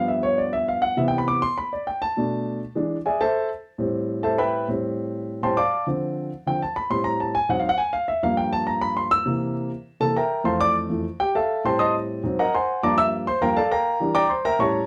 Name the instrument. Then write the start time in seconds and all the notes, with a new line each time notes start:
grand piano
Already playing: G2 F3 B3
0.08 E5
0.23 C#5
0.38 D5
0.53 E5
0.68 F5
0.82 F#5
0.97 C3 E3 B3 E5
1.08 G5
1.18 B5
1.28 D6
1.42 C6
1.58 B5
1.73 D5
1.87 G5
2.02 A5
2.17 B2 A3 D4
2.75 E3 G#3 D4
3.06 G#4 D5 E5 G#5
3.21 A4 C5 E5 A5
3.78 A2 G3 C4
4.23 A4 C5 E5 A5
4.38 B4 E5 G5 B5
4.68 A2 G3 C4
5.43 A2 G3 C4 C5 G5 A5 C6
5.57 D5 F5 A5 D6
5.87 D3 F3 C4
6.46 D3 F3 C4 G5
6.62 A5
6.76 B5
6.90 A2 G3 C4 C6
7.04 A#5
7.20 A5
7.35 G#5
7.49 G#2 F#3 C4 F#5
7.60 F5
7.69 F#5
7.78 G#5
7.93 F5
8.08 E5
8.22 G2 F3 A#3 F5
8.37 G5
8.53 A5
8.67 A#5
8.81 B5
8.97 C6
9.11 E6
9.26 C3 E3 A#3
10.00 C3 E3 A#3 A4 A5
10.17 A#4 E5 G5 A#5
10.44 F2 E3 A3 C5 F5 A5 C6
10.60 D5 D6
10.89 F2 E3 A3
11.20 G4 G5
11.35 A4 E5 F5 A5
11.64 A2 G3 C4 C5 G5 A5 C6
11.79 D#5 A5 C6 D#6
12.23 G#2 F#3 C4
12.39 A#4 D#5 F#5 A#5
12.54 C5 F#5 G#5 C6
12.83 G2 F3 A#3 D5 A5 A#5 D6
12.98 E5 E6
13.27 C5 C6
13.41 G2 F3 A#3 A#4 F5 G5 A#5
13.56 A4 D5 F5 A5
13.71 A#4 F5 G5 A#5
14.00 E3 G3 D4
14.15 D5 G5 A#5 D6
14.29 C5 C6
14.45 A#4 E5 G5 A#5
14.59 A2 G3 C#4 C#5 A5 A#5 C#6